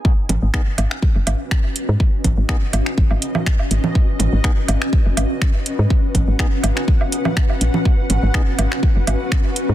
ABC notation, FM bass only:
X:1
M:4/4
L:1/16
Q:"Swing 16ths" 1/4=123
K:G#m
V:1 name="FM bass" clef=bass
z2 G,,, G,,, z2 G,,, z2 F,,, G,,, z4 G,, | z2 G,,, G,,, z2 G,,, z G,,, G,,, z4 G,,, z | z2 G,,, G,,, z2 G,,, z2 F,,, G,,, z4 G,, | z2 G,,, G,,, z2 G,,, z6 z A,,, z |
z2 G,,, G,,, z2 G,,, z2 F,,, G,,, z4 G,, |]